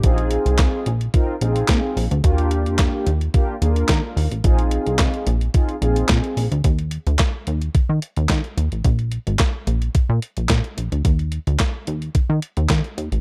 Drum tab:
HH |xxxxx-xxx-xxx-ox|xxxxx-xxx-xxx-ox|xxxxxxxxxxxxxxox|xxxxx-xxx-xxxxxx|
CP |----x-------x---|----x-------x---|----x-------x---|----x-------x---|
SD |----o-------o---|----o-------o---|----o-------o---|----o-------o---|
BD |o---o---o---o---|o---o---o---o---|o---o---o---o---|o---o---o---o---|

HH |xxxxx-xxx-xxxxxx|xxxxx-xxx-xxxxxx|
CP |----x-------x---|----x-------x---|
SD |----o-------o---|----o-------o---|
BD |o---o---o---o---|o---o---o---o---|